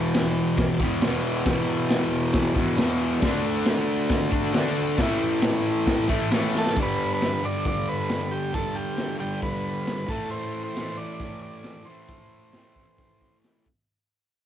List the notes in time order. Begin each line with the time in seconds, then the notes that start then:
Already playing: E2 B2 E3
0.04 shaker
0.13 snare, crash, shaker
0.35 shaker
0.57 kick, snare, crash, shaker
0.69 shaker
0.78 E3, kick, shaker
0.83 E2 B2
1.00 E2, snare, crash, shaker
1.05 B2 E3
1.14 shaker
1.25 shaker
1.36 shaker
1.46 E2 B2, kick, snare, crash, shaker
1.51 E3
1.58 shaker
1.69 shaker
1.81 shaker
1.90 snare, crash, shaker
2.14 shaker
2.33 kick, snare, crash, shaker
2.47 shaker
2.56 B2 E3, kick, shaker
2.60 E2
2.78 E2 B2, snare, crash, shaker
2.83 E3
3.01 shaker
3.12 shaker
3.21 D3 A3, kick, snare, crash, shaker
3.26 D4
3.34 shaker
3.45 shaker
3.56 shaker
3.65 snare, crash, shaker
3.88 shaker
4.09 kick, snare, crash, shaker
4.21 shaker
4.30 A3 D4, kick, shaker
4.35 D3
4.53 D3 A3, snare, crash, shaker
4.58 D4
4.64 shaker
4.74 shaker
4.87 shaker
4.97 A2, kick, snare, crash, shaker
5.02 E3 A3
5.08 shaker
5.19 shaker
5.30 shaker
5.41 snare, crash, shaker
5.52 shaker
5.64 shaker
5.76 shaker
5.86 kick, snare, crash, shaker
5.98 shaker
6.08 E3 A3, kick, shaker
6.13 A2
6.20 shaker
6.31 A2 E3, snare, crash, shaker
6.36 A3
6.45 shaker
6.55 A4, snare
6.66 snare, shaker
6.75 G2 D3, kick, open hi-hat, shaker
6.80 G3 B4
7.00 shaker
7.14 B4
7.21 snare, open hi-hat, shaker
7.43 D3 G3 D5, shaker
7.47 G2
7.65 D5, kick, open hi-hat, shaker
7.89 B4, shaker
8.09 snare, open hi-hat, shaker
8.31 G4, shaker
8.43 shaker
8.53 G2 D3 A4, kick, open hi-hat, shaker
8.59 G3
8.75 G4, shaker
8.97 snare, open hi-hat, shaker
9.19 D3 G3 G4, shaker
9.23 G2
9.42 B4, kick, open hi-hat, shaker
9.76 shaker
9.86 snare, open hi-hat, shaker
10.07 A2 E3 A4, kick, shaker
10.12 A3
10.22 shaker
10.31 C5, open hi-hat, shaker
10.54 shaker
10.64 C5
10.76 A2 E3, snare, open hi-hat, shaker
10.80 A3
10.97 D5, shaker
11.20 kick, open hi-hat, shaker
11.42 D5, shaker
11.64 snare, open hi-hat, shaker
11.85 A2 E3 C5, shaker
11.90 A3
11.98 shaker
12.08 kick, open hi-hat, shaker
12.32 shaker
12.44 shaker
12.53 A2 E3, snare, open hi-hat, shaker
12.58 A3
12.76 kick, shaker
12.99 kick, open hi-hat, shaker
13.20 kick, shaker
13.43 snare, open hi-hat, shaker
13.66 kick, shaker